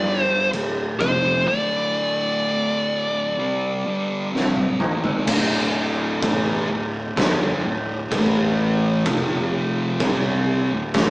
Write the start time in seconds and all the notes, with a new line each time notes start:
Already playing: G1 G2 D3 G3 D5
0.23 C5
0.53 D1 D2 A2, crash
1.00 F1 F2 C3 F3 C5, kick
1.47 D2 A2 D3 D5
3.38 C3 G3 C4
3.85 G2 D3 G3
4.33 C3 G3 C4, snare
4.56 high tom
4.80 A2 E3, mid tom
5.04 G#2 D#3, floor tom
5.27 D1 D2 A2 D3, kick, crash
6.22 A1 A2 E3 A3, kick, crash
6.70 D1 D2 A2
7.17 G1 G2 D3 G3, kick, snare, crash
7.64 D1 D2 A2
8.10 A1 A2 E3 A3, kick, crash
9.06 F1 F2 C3 F3, kick, crash
10.00 C2 C3 G3 C4, kick, crash
10.71 D1 D2 A2
10.94 A1 A2 E3, kick, snare, crash